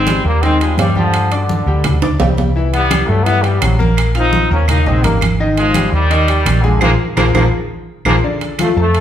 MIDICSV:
0, 0, Header, 1, 5, 480
1, 0, Start_track
1, 0, Tempo, 355030
1, 1540, Time_signature, 4, 2, 24, 8
1, 12172, End_track
2, 0, Start_track
2, 0, Title_t, "Grand piano"
2, 0, Program_c, 0, 0
2, 93, Note_on_c, 0, 55, 80
2, 99, Note_on_c, 0, 67, 72
2, 101, Note_on_c, 0, 79, 81
2, 490, Note_off_c, 0, 55, 0
2, 493, Note_off_c, 0, 67, 0
2, 494, Note_off_c, 0, 79, 0
2, 578, Note_on_c, 0, 51, 77
2, 581, Note_on_c, 0, 63, 82
2, 589, Note_on_c, 0, 75, 77
2, 776, Note_off_c, 0, 51, 0
2, 777, Note_off_c, 0, 63, 0
2, 782, Note_off_c, 0, 75, 0
2, 823, Note_on_c, 0, 55, 76
2, 824, Note_on_c, 0, 67, 73
2, 826, Note_on_c, 0, 79, 74
2, 1215, Note_off_c, 0, 55, 0
2, 1216, Note_off_c, 0, 67, 0
2, 1217, Note_off_c, 0, 79, 0
2, 1296, Note_on_c, 0, 55, 88
2, 1304, Note_on_c, 0, 67, 88
2, 1310, Note_on_c, 0, 79, 78
2, 1692, Note_off_c, 0, 55, 0
2, 1696, Note_off_c, 0, 67, 0
2, 1700, Note_off_c, 0, 79, 0
2, 1778, Note_on_c, 0, 62, 78
2, 1782, Note_on_c, 0, 74, 74
2, 1787, Note_on_c, 0, 86, 85
2, 2173, Note_off_c, 0, 62, 0
2, 2175, Note_off_c, 0, 74, 0
2, 2178, Note_off_c, 0, 86, 0
2, 2254, Note_on_c, 0, 55, 74
2, 2260, Note_on_c, 0, 67, 76
2, 2267, Note_on_c, 0, 79, 67
2, 2650, Note_off_c, 0, 55, 0
2, 2653, Note_off_c, 0, 67, 0
2, 2658, Note_off_c, 0, 79, 0
2, 2740, Note_on_c, 0, 62, 79
2, 2745, Note_on_c, 0, 74, 69
2, 2750, Note_on_c, 0, 86, 77
2, 2937, Note_off_c, 0, 62, 0
2, 2940, Note_off_c, 0, 74, 0
2, 2942, Note_off_c, 0, 86, 0
2, 2977, Note_on_c, 0, 55, 76
2, 2981, Note_on_c, 0, 67, 67
2, 2984, Note_on_c, 0, 79, 74
2, 3372, Note_off_c, 0, 55, 0
2, 3374, Note_off_c, 0, 67, 0
2, 3376, Note_off_c, 0, 79, 0
2, 3457, Note_on_c, 0, 52, 83
2, 3466, Note_on_c, 0, 64, 88
2, 3467, Note_on_c, 0, 76, 77
2, 3852, Note_off_c, 0, 52, 0
2, 3858, Note_off_c, 0, 64, 0
2, 3858, Note_off_c, 0, 76, 0
2, 3926, Note_on_c, 0, 55, 69
2, 3928, Note_on_c, 0, 67, 72
2, 3930, Note_on_c, 0, 79, 81
2, 4325, Note_off_c, 0, 55, 0
2, 4327, Note_off_c, 0, 67, 0
2, 4328, Note_off_c, 0, 79, 0
2, 4405, Note_on_c, 0, 52, 70
2, 4412, Note_on_c, 0, 64, 80
2, 4412, Note_on_c, 0, 76, 78
2, 4608, Note_off_c, 0, 52, 0
2, 4612, Note_off_c, 0, 64, 0
2, 4612, Note_off_c, 0, 76, 0
2, 4646, Note_on_c, 0, 55, 71
2, 4652, Note_on_c, 0, 67, 82
2, 4656, Note_on_c, 0, 79, 71
2, 5046, Note_off_c, 0, 55, 0
2, 5049, Note_off_c, 0, 67, 0
2, 5052, Note_off_c, 0, 79, 0
2, 5122, Note_on_c, 0, 58, 91
2, 5127, Note_on_c, 0, 70, 84
2, 5136, Note_on_c, 0, 82, 83
2, 5523, Note_off_c, 0, 58, 0
2, 5526, Note_off_c, 0, 70, 0
2, 5532, Note_off_c, 0, 82, 0
2, 5611, Note_on_c, 0, 65, 69
2, 5616, Note_on_c, 0, 77, 80
2, 5617, Note_on_c, 0, 89, 87
2, 6008, Note_off_c, 0, 65, 0
2, 6012, Note_off_c, 0, 77, 0
2, 6012, Note_off_c, 0, 89, 0
2, 6091, Note_on_c, 0, 58, 79
2, 6097, Note_on_c, 0, 70, 73
2, 6099, Note_on_c, 0, 82, 76
2, 6488, Note_off_c, 0, 58, 0
2, 6492, Note_off_c, 0, 70, 0
2, 6493, Note_off_c, 0, 82, 0
2, 6576, Note_on_c, 0, 63, 84
2, 6580, Note_on_c, 0, 75, 81
2, 6584, Note_on_c, 0, 87, 74
2, 6774, Note_off_c, 0, 63, 0
2, 6777, Note_off_c, 0, 75, 0
2, 6779, Note_off_c, 0, 87, 0
2, 6814, Note_on_c, 0, 58, 74
2, 6818, Note_on_c, 0, 70, 76
2, 6821, Note_on_c, 0, 82, 78
2, 7210, Note_off_c, 0, 58, 0
2, 7213, Note_off_c, 0, 70, 0
2, 7215, Note_off_c, 0, 82, 0
2, 7302, Note_on_c, 0, 51, 83
2, 7302, Note_on_c, 0, 63, 81
2, 7307, Note_on_c, 0, 75, 87
2, 7695, Note_off_c, 0, 51, 0
2, 7695, Note_off_c, 0, 63, 0
2, 7698, Note_off_c, 0, 75, 0
2, 7778, Note_on_c, 0, 55, 71
2, 7781, Note_on_c, 0, 67, 80
2, 7784, Note_on_c, 0, 79, 78
2, 8173, Note_off_c, 0, 55, 0
2, 8174, Note_off_c, 0, 67, 0
2, 8176, Note_off_c, 0, 79, 0
2, 8251, Note_on_c, 0, 51, 88
2, 8255, Note_on_c, 0, 63, 83
2, 8258, Note_on_c, 0, 75, 78
2, 8452, Note_off_c, 0, 51, 0
2, 8454, Note_off_c, 0, 63, 0
2, 8456, Note_off_c, 0, 75, 0
2, 8492, Note_on_c, 0, 55, 78
2, 8493, Note_on_c, 0, 67, 74
2, 8494, Note_on_c, 0, 79, 78
2, 8889, Note_off_c, 0, 55, 0
2, 8890, Note_off_c, 0, 67, 0
2, 8890, Note_off_c, 0, 79, 0
2, 8965, Note_on_c, 0, 56, 90
2, 8971, Note_on_c, 0, 68, 76
2, 8974, Note_on_c, 0, 80, 88
2, 9168, Note_off_c, 0, 56, 0
2, 9172, Note_off_c, 0, 68, 0
2, 9174, Note_off_c, 0, 80, 0
2, 9204, Note_on_c, 0, 65, 98
2, 9208, Note_on_c, 0, 68, 103
2, 9211, Note_on_c, 0, 70, 93
2, 9364, Note_off_c, 0, 65, 0
2, 9367, Note_off_c, 0, 68, 0
2, 9369, Note_off_c, 0, 70, 0
2, 9691, Note_on_c, 0, 65, 105
2, 9691, Note_on_c, 0, 70, 108
2, 9692, Note_on_c, 0, 68, 107
2, 9848, Note_off_c, 0, 70, 0
2, 9849, Note_off_c, 0, 65, 0
2, 9849, Note_off_c, 0, 68, 0
2, 9931, Note_on_c, 0, 65, 93
2, 9933, Note_on_c, 0, 70, 91
2, 9934, Note_on_c, 0, 68, 99
2, 10089, Note_off_c, 0, 65, 0
2, 10090, Note_off_c, 0, 70, 0
2, 10091, Note_off_c, 0, 68, 0
2, 10894, Note_on_c, 0, 68, 100
2, 10896, Note_on_c, 0, 65, 102
2, 10901, Note_on_c, 0, 70, 102
2, 11051, Note_off_c, 0, 68, 0
2, 11052, Note_off_c, 0, 65, 0
2, 11054, Note_off_c, 0, 70, 0
2, 11134, Note_on_c, 0, 50, 75
2, 11141, Note_on_c, 0, 62, 86
2, 11142, Note_on_c, 0, 74, 83
2, 11531, Note_off_c, 0, 50, 0
2, 11535, Note_off_c, 0, 62, 0
2, 11536, Note_off_c, 0, 74, 0
2, 11609, Note_on_c, 0, 53, 84
2, 11615, Note_on_c, 0, 65, 74
2, 11619, Note_on_c, 0, 77, 79
2, 11811, Note_off_c, 0, 53, 0
2, 11815, Note_off_c, 0, 65, 0
2, 11817, Note_off_c, 0, 77, 0
2, 11852, Note_on_c, 0, 57, 76
2, 11858, Note_on_c, 0, 69, 76
2, 11860, Note_on_c, 0, 81, 75
2, 12172, Note_off_c, 0, 57, 0
2, 12172, Note_off_c, 0, 69, 0
2, 12172, Note_off_c, 0, 81, 0
2, 12172, End_track
3, 0, Start_track
3, 0, Title_t, "Trombone section"
3, 0, Program_c, 1, 61
3, 0, Note_on_c, 1, 56, 91
3, 0, Note_on_c, 1, 60, 114
3, 307, Note_off_c, 1, 56, 0
3, 311, Note_off_c, 1, 60, 0
3, 331, Note_on_c, 1, 55, 75
3, 337, Note_on_c, 1, 58, 92
3, 559, Note_off_c, 1, 55, 0
3, 562, Note_off_c, 1, 58, 0
3, 568, Note_on_c, 1, 56, 80
3, 569, Note_on_c, 1, 60, 117
3, 802, Note_off_c, 1, 56, 0
3, 815, Note_off_c, 1, 60, 0
3, 818, Note_on_c, 1, 56, 87
3, 820, Note_on_c, 1, 53, 74
3, 1042, Note_off_c, 1, 56, 0
3, 1043, Note_off_c, 1, 53, 0
3, 1060, Note_on_c, 1, 55, 90
3, 1067, Note_on_c, 1, 51, 71
3, 1283, Note_off_c, 1, 55, 0
3, 1287, Note_off_c, 1, 51, 0
3, 1299, Note_on_c, 1, 53, 98
3, 1304, Note_on_c, 1, 50, 72
3, 1746, Note_off_c, 1, 53, 0
3, 1749, Note_off_c, 1, 50, 0
3, 1792, Note_on_c, 1, 50, 80
3, 1801, Note_on_c, 1, 47, 61
3, 2692, Note_off_c, 1, 50, 0
3, 2696, Note_off_c, 1, 47, 0
3, 3697, Note_on_c, 1, 59, 109
3, 3710, Note_on_c, 1, 55, 87
3, 4145, Note_off_c, 1, 59, 0
3, 4149, Note_on_c, 1, 57, 86
3, 4152, Note_off_c, 1, 55, 0
3, 4180, Note_on_c, 1, 54, 74
3, 4382, Note_on_c, 1, 59, 110
3, 4404, Note_off_c, 1, 57, 0
3, 4417, Note_on_c, 1, 55, 82
3, 4420, Note_off_c, 1, 54, 0
3, 4607, Note_off_c, 1, 55, 0
3, 4623, Note_on_c, 1, 55, 78
3, 4641, Note_off_c, 1, 59, 0
3, 4653, Note_on_c, 1, 52, 68
3, 4873, Note_on_c, 1, 54, 76
3, 4882, Note_off_c, 1, 55, 0
3, 4897, Note_off_c, 1, 52, 0
3, 4902, Note_on_c, 1, 48, 56
3, 5127, Note_off_c, 1, 54, 0
3, 5141, Note_off_c, 1, 48, 0
3, 5638, Note_on_c, 1, 60, 88
3, 5659, Note_on_c, 1, 63, 113
3, 6076, Note_off_c, 1, 60, 0
3, 6088, Note_off_c, 1, 63, 0
3, 6115, Note_on_c, 1, 58, 64
3, 6117, Note_on_c, 1, 61, 87
3, 6331, Note_off_c, 1, 58, 0
3, 6332, Note_off_c, 1, 61, 0
3, 6337, Note_on_c, 1, 63, 108
3, 6348, Note_on_c, 1, 58, 82
3, 6562, Note_off_c, 1, 63, 0
3, 6568, Note_off_c, 1, 58, 0
3, 6588, Note_on_c, 1, 60, 86
3, 6600, Note_on_c, 1, 56, 74
3, 6824, Note_off_c, 1, 60, 0
3, 6828, Note_on_c, 1, 58, 73
3, 6830, Note_off_c, 1, 56, 0
3, 6838, Note_on_c, 1, 55, 62
3, 7064, Note_off_c, 1, 58, 0
3, 7069, Note_off_c, 1, 55, 0
3, 7539, Note_on_c, 1, 56, 103
3, 7546, Note_on_c, 1, 53, 84
3, 7986, Note_off_c, 1, 56, 0
3, 7990, Note_off_c, 1, 53, 0
3, 8012, Note_on_c, 1, 55, 99
3, 8035, Note_on_c, 1, 51, 83
3, 8922, Note_off_c, 1, 55, 0
3, 8934, Note_off_c, 1, 51, 0
3, 8962, Note_on_c, 1, 50, 78
3, 8990, Note_on_c, 1, 46, 70
3, 9211, Note_off_c, 1, 50, 0
3, 9214, Note_on_c, 1, 56, 109
3, 9218, Note_on_c, 1, 53, 107
3, 9220, Note_on_c, 1, 58, 117
3, 9225, Note_off_c, 1, 46, 0
3, 9331, Note_off_c, 1, 56, 0
3, 9334, Note_off_c, 1, 53, 0
3, 9335, Note_off_c, 1, 58, 0
3, 9685, Note_on_c, 1, 53, 99
3, 9686, Note_on_c, 1, 58, 95
3, 9687, Note_on_c, 1, 56, 87
3, 9805, Note_off_c, 1, 53, 0
3, 9806, Note_off_c, 1, 56, 0
3, 9806, Note_off_c, 1, 58, 0
3, 9931, Note_on_c, 1, 56, 83
3, 9934, Note_on_c, 1, 53, 88
3, 9937, Note_on_c, 1, 58, 82
3, 10049, Note_off_c, 1, 56, 0
3, 10051, Note_off_c, 1, 53, 0
3, 10053, Note_off_c, 1, 58, 0
3, 10894, Note_on_c, 1, 56, 91
3, 10896, Note_on_c, 1, 53, 102
3, 10897, Note_on_c, 1, 58, 95
3, 11011, Note_off_c, 1, 56, 0
3, 11013, Note_off_c, 1, 53, 0
3, 11013, Note_off_c, 1, 58, 0
3, 11641, Note_on_c, 1, 53, 72
3, 11648, Note_on_c, 1, 57, 85
3, 11745, Note_off_c, 1, 53, 0
3, 11750, Note_off_c, 1, 57, 0
3, 11877, Note_on_c, 1, 53, 73
3, 11894, Note_on_c, 1, 57, 91
3, 12172, Note_off_c, 1, 53, 0
3, 12172, Note_off_c, 1, 57, 0
3, 12172, End_track
4, 0, Start_track
4, 0, Title_t, "Fingered electric bass"
4, 0, Program_c, 2, 33
4, 0, Note_on_c, 2, 32, 88
4, 257, Note_off_c, 2, 32, 0
4, 331, Note_on_c, 2, 39, 93
4, 1005, Note_off_c, 2, 39, 0
4, 1046, Note_on_c, 2, 43, 85
4, 2175, Note_off_c, 2, 43, 0
4, 2248, Note_on_c, 2, 38, 99
4, 2923, Note_off_c, 2, 38, 0
4, 2970, Note_on_c, 2, 36, 89
4, 4097, Note_off_c, 2, 36, 0
4, 4174, Note_on_c, 2, 43, 98
4, 4847, Note_off_c, 2, 43, 0
4, 4895, Note_on_c, 2, 34, 80
4, 6020, Note_off_c, 2, 34, 0
4, 6090, Note_on_c, 2, 39, 96
4, 6541, Note_off_c, 2, 39, 0
4, 6576, Note_on_c, 2, 34, 74
4, 6801, Note_off_c, 2, 34, 0
4, 6811, Note_on_c, 2, 32, 84
4, 7938, Note_off_c, 2, 32, 0
4, 8008, Note_on_c, 2, 39, 89
4, 8683, Note_off_c, 2, 39, 0
4, 8724, Note_on_c, 2, 34, 97
4, 9178, Note_off_c, 2, 34, 0
4, 9207, Note_on_c, 2, 34, 103
4, 9392, Note_off_c, 2, 34, 0
4, 9688, Note_on_c, 2, 34, 97
4, 9873, Note_off_c, 2, 34, 0
4, 9924, Note_on_c, 2, 34, 99
4, 10111, Note_off_c, 2, 34, 0
4, 10883, Note_on_c, 2, 34, 84
4, 11070, Note_off_c, 2, 34, 0
4, 11849, Note_on_c, 2, 41, 93
4, 12172, Note_off_c, 2, 41, 0
4, 12172, End_track
5, 0, Start_track
5, 0, Title_t, "Drums"
5, 90, Note_on_c, 9, 63, 94
5, 102, Note_on_c, 9, 65, 85
5, 226, Note_off_c, 9, 63, 0
5, 237, Note_off_c, 9, 65, 0
5, 577, Note_on_c, 9, 63, 37
5, 581, Note_on_c, 9, 65, 62
5, 712, Note_off_c, 9, 63, 0
5, 716, Note_off_c, 9, 65, 0
5, 815, Note_on_c, 9, 63, 36
5, 828, Note_on_c, 9, 65, 68
5, 950, Note_off_c, 9, 63, 0
5, 963, Note_off_c, 9, 65, 0
5, 1053, Note_on_c, 9, 63, 83
5, 1066, Note_on_c, 9, 65, 114
5, 1066, Note_on_c, 9, 66, 87
5, 1188, Note_off_c, 9, 63, 0
5, 1201, Note_off_c, 9, 65, 0
5, 1201, Note_off_c, 9, 66, 0
5, 1291, Note_on_c, 9, 63, 80
5, 1426, Note_off_c, 9, 63, 0
5, 1536, Note_on_c, 9, 65, 88
5, 1549, Note_on_c, 9, 63, 34
5, 1671, Note_off_c, 9, 65, 0
5, 1684, Note_off_c, 9, 63, 0
5, 1779, Note_on_c, 9, 65, 67
5, 1793, Note_on_c, 9, 63, 33
5, 1914, Note_off_c, 9, 65, 0
5, 1928, Note_off_c, 9, 63, 0
5, 2019, Note_on_c, 9, 63, 91
5, 2154, Note_off_c, 9, 63, 0
5, 2261, Note_on_c, 9, 63, 32
5, 2396, Note_off_c, 9, 63, 0
5, 2489, Note_on_c, 9, 65, 95
5, 2495, Note_on_c, 9, 63, 34
5, 2495, Note_on_c, 9, 64, 99
5, 2624, Note_off_c, 9, 65, 0
5, 2630, Note_off_c, 9, 63, 0
5, 2630, Note_off_c, 9, 64, 0
5, 2733, Note_on_c, 9, 65, 88
5, 2738, Note_on_c, 9, 63, 37
5, 2738, Note_on_c, 9, 64, 73
5, 2868, Note_off_c, 9, 65, 0
5, 2874, Note_off_c, 9, 63, 0
5, 2874, Note_off_c, 9, 64, 0
5, 2970, Note_on_c, 9, 66, 116
5, 2973, Note_on_c, 9, 63, 89
5, 3106, Note_off_c, 9, 66, 0
5, 3108, Note_off_c, 9, 63, 0
5, 3212, Note_on_c, 9, 63, 70
5, 3222, Note_on_c, 9, 66, 77
5, 3347, Note_off_c, 9, 63, 0
5, 3357, Note_off_c, 9, 66, 0
5, 3450, Note_on_c, 9, 63, 34
5, 3585, Note_off_c, 9, 63, 0
5, 3691, Note_on_c, 9, 63, 35
5, 3699, Note_on_c, 9, 65, 65
5, 3826, Note_off_c, 9, 63, 0
5, 3835, Note_off_c, 9, 65, 0
5, 3931, Note_on_c, 9, 63, 102
5, 3936, Note_on_c, 9, 65, 105
5, 3943, Note_on_c, 9, 75, 67
5, 4066, Note_off_c, 9, 63, 0
5, 4071, Note_off_c, 9, 65, 0
5, 4078, Note_off_c, 9, 75, 0
5, 4413, Note_on_c, 9, 65, 72
5, 4415, Note_on_c, 9, 63, 40
5, 4548, Note_off_c, 9, 65, 0
5, 4550, Note_off_c, 9, 63, 0
5, 4649, Note_on_c, 9, 65, 60
5, 4654, Note_on_c, 9, 63, 36
5, 4784, Note_off_c, 9, 65, 0
5, 4789, Note_off_c, 9, 63, 0
5, 4892, Note_on_c, 9, 65, 114
5, 4892, Note_on_c, 9, 75, 66
5, 4898, Note_on_c, 9, 63, 82
5, 5027, Note_off_c, 9, 65, 0
5, 5027, Note_off_c, 9, 75, 0
5, 5033, Note_off_c, 9, 63, 0
5, 5139, Note_on_c, 9, 63, 76
5, 5274, Note_off_c, 9, 63, 0
5, 5371, Note_on_c, 9, 75, 67
5, 5379, Note_on_c, 9, 63, 37
5, 5381, Note_on_c, 9, 65, 88
5, 5506, Note_off_c, 9, 75, 0
5, 5515, Note_off_c, 9, 63, 0
5, 5517, Note_off_c, 9, 65, 0
5, 5610, Note_on_c, 9, 65, 61
5, 5618, Note_on_c, 9, 63, 36
5, 5745, Note_off_c, 9, 65, 0
5, 5753, Note_off_c, 9, 63, 0
5, 5850, Note_on_c, 9, 63, 93
5, 5985, Note_off_c, 9, 63, 0
5, 6085, Note_on_c, 9, 63, 33
5, 6220, Note_off_c, 9, 63, 0
5, 6326, Note_on_c, 9, 75, 75
5, 6333, Note_on_c, 9, 63, 41
5, 6333, Note_on_c, 9, 64, 101
5, 6338, Note_on_c, 9, 65, 103
5, 6461, Note_off_c, 9, 75, 0
5, 6468, Note_off_c, 9, 63, 0
5, 6468, Note_off_c, 9, 64, 0
5, 6473, Note_off_c, 9, 65, 0
5, 6575, Note_on_c, 9, 63, 34
5, 6575, Note_on_c, 9, 64, 82
5, 6710, Note_off_c, 9, 63, 0
5, 6710, Note_off_c, 9, 64, 0
5, 6810, Note_on_c, 9, 63, 82
5, 6817, Note_on_c, 9, 65, 86
5, 6945, Note_off_c, 9, 63, 0
5, 6953, Note_off_c, 9, 65, 0
5, 7048, Note_on_c, 9, 75, 72
5, 7050, Note_on_c, 9, 63, 80
5, 7061, Note_on_c, 9, 65, 96
5, 7183, Note_off_c, 9, 75, 0
5, 7186, Note_off_c, 9, 63, 0
5, 7196, Note_off_c, 9, 65, 0
5, 7296, Note_on_c, 9, 63, 35
5, 7431, Note_off_c, 9, 63, 0
5, 7537, Note_on_c, 9, 65, 66
5, 7540, Note_on_c, 9, 63, 36
5, 7672, Note_off_c, 9, 65, 0
5, 7675, Note_off_c, 9, 63, 0
5, 7764, Note_on_c, 9, 75, 73
5, 7766, Note_on_c, 9, 63, 99
5, 7778, Note_on_c, 9, 65, 87
5, 7900, Note_off_c, 9, 75, 0
5, 7901, Note_off_c, 9, 63, 0
5, 7914, Note_off_c, 9, 65, 0
5, 8252, Note_on_c, 9, 63, 36
5, 8259, Note_on_c, 9, 65, 74
5, 8387, Note_off_c, 9, 63, 0
5, 8395, Note_off_c, 9, 65, 0
5, 8492, Note_on_c, 9, 63, 34
5, 8494, Note_on_c, 9, 65, 69
5, 8627, Note_off_c, 9, 63, 0
5, 8629, Note_off_c, 9, 65, 0
5, 8733, Note_on_c, 9, 75, 68
5, 8736, Note_on_c, 9, 63, 86
5, 8739, Note_on_c, 9, 65, 112
5, 8868, Note_off_c, 9, 75, 0
5, 8871, Note_off_c, 9, 63, 0
5, 8874, Note_off_c, 9, 65, 0
5, 8974, Note_on_c, 9, 63, 76
5, 9110, Note_off_c, 9, 63, 0
5, 9206, Note_on_c, 9, 75, 107
5, 9217, Note_on_c, 9, 63, 104
5, 9217, Note_on_c, 9, 65, 97
5, 9341, Note_off_c, 9, 75, 0
5, 9352, Note_off_c, 9, 63, 0
5, 9352, Note_off_c, 9, 65, 0
5, 9693, Note_on_c, 9, 75, 104
5, 9698, Note_on_c, 9, 65, 102
5, 9701, Note_on_c, 9, 63, 97
5, 9828, Note_off_c, 9, 75, 0
5, 9833, Note_off_c, 9, 65, 0
5, 9836, Note_off_c, 9, 63, 0
5, 9934, Note_on_c, 9, 65, 102
5, 9935, Note_on_c, 9, 75, 106
5, 9940, Note_on_c, 9, 63, 92
5, 10069, Note_off_c, 9, 65, 0
5, 10071, Note_off_c, 9, 75, 0
5, 10075, Note_off_c, 9, 63, 0
5, 10887, Note_on_c, 9, 75, 104
5, 10894, Note_on_c, 9, 65, 88
5, 10901, Note_on_c, 9, 63, 94
5, 11022, Note_off_c, 9, 75, 0
5, 11029, Note_off_c, 9, 65, 0
5, 11037, Note_off_c, 9, 63, 0
5, 11145, Note_on_c, 9, 63, 34
5, 11280, Note_off_c, 9, 63, 0
5, 11375, Note_on_c, 9, 65, 65
5, 11382, Note_on_c, 9, 63, 36
5, 11510, Note_off_c, 9, 65, 0
5, 11517, Note_off_c, 9, 63, 0
5, 11608, Note_on_c, 9, 75, 72
5, 11612, Note_on_c, 9, 65, 84
5, 11617, Note_on_c, 9, 63, 95
5, 11743, Note_off_c, 9, 75, 0
5, 11747, Note_off_c, 9, 65, 0
5, 11752, Note_off_c, 9, 63, 0
5, 12094, Note_on_c, 9, 65, 70
5, 12109, Note_on_c, 9, 63, 38
5, 12172, Note_off_c, 9, 63, 0
5, 12172, Note_off_c, 9, 65, 0
5, 12172, End_track
0, 0, End_of_file